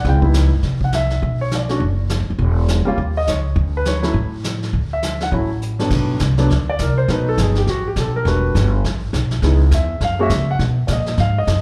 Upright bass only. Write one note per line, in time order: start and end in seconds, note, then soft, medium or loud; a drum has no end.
0.05 0.48 C#2 medium
0.52 0.62 G2 medium
0.63 1.19 C2 medium
1.22 1.78 B1 medium
1.80 2.17 F#1 medium
2.21 2.29 A1 medium
2.30 2.38 F#1 medium
2.39 2.83 E1 medium
2.87 muted upright bass stroke soft
2.98 3.25 D#2 medium
3.28 3.55 C#2 medium
3.56 4.12 D2 medium
4.14 4.70 A2 medium
4.73 5.29 D2 medium
5.32 5.88 A1 medium
5.91 6.20 B1 medium
6.20 6.49 C2 medium
6.50 6.78 D2 medium
6.79 7.08 C2 medium
7.08 7.37 B1 medium
7.38 7.66 G1 medium
7.67 7.95 A1 medium
7.96 8.25 B1 medium
8.25 8.54 E1 medium
8.55 8.83 G1 medium
8.85 9.12 A1 medium
9.13 9.42 B1 medium
9.42 9.71 C#2 medium
9.71 10.00 E2 medium
10.01 10.29 F#2 medium
10.30 10.58 C#3 medium
10.59 10.88 B2 medium
10.88 11.17 A#2 medium
11.18 11.46 G#2 medium
11.47 11.62 F#2 medium